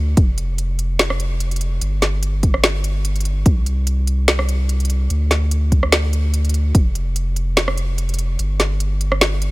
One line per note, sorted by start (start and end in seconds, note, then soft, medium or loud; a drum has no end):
0.00 0.15 D2 medium
0.17 1.80 F1 medium
0.17 kick loud
0.17 closed hi-hat medium
0.38 closed hi-hat medium
0.58 closed hi-hat medium
0.79 closed hi-hat medium
0.99 snare loud
0.99 closed hi-hat medium
1.10 cross-stick medium
1.20 closed hi-hat medium
1.40 closed hi-hat medium
1.51 closed hi-hat soft
1.56 closed hi-hat medium
1.61 closed hi-hat medium
1.81 3.44 G1 medium
1.81 closed hi-hat medium
2.02 snare medium
2.02 closed hi-hat medium
2.23 closed hi-hat medium
2.43 kick medium
2.43 closed hi-hat medium
2.54 cross-stick medium
2.64 snare loud
2.64 closed hi-hat medium
2.84 closed hi-hat medium
3.05 closed hi-hat medium
3.16 closed hi-hat soft
3.20 closed hi-hat medium
3.25 closed hi-hat medium
3.46 5.08 C2 medium
3.46 kick loud
3.46 closed hi-hat medium
3.66 closed hi-hat medium
3.87 closed hi-hat medium
4.07 closed hi-hat medium
4.28 snare loud
4.28 closed hi-hat medium
4.39 cross-stick medium
4.49 closed hi-hat medium
4.69 closed hi-hat medium
4.80 closed hi-hat soft
4.85 closed hi-hat medium
4.90 closed hi-hat medium
5.10 6.73 D2 medium
5.10 closed hi-hat medium
5.31 snare medium
5.31 closed hi-hat medium
5.51 closed hi-hat medium
5.72 kick medium
5.72 closed hi-hat medium
5.83 cross-stick medium
5.92 snare loud
5.92 closed hi-hat medium
6.13 closed hi-hat medium
6.34 closed hi-hat medium
6.45 closed hi-hat soft
6.49 closed hi-hat medium
6.54 closed hi-hat medium
6.75 8.37 F1 medium
6.75 kick loud
6.75 closed hi-hat medium
6.95 closed hi-hat medium
7.16 closed hi-hat medium
7.36 closed hi-hat medium
7.57 snare loud
7.57 closed hi-hat medium
7.68 cross-stick medium
7.78 closed hi-hat medium
7.98 closed hi-hat medium
8.09 closed hi-hat soft
8.14 closed hi-hat medium
8.19 closed hi-hat medium
8.39 9.51 G1 medium
8.39 closed hi-hat medium
8.60 snare medium
8.60 closed hi-hat medium
8.80 closed hi-hat medium
9.01 closed hi-hat medium
9.12 cross-stick medium
9.21 snare loud
9.21 closed hi-hat medium
9.42 closed hi-hat medium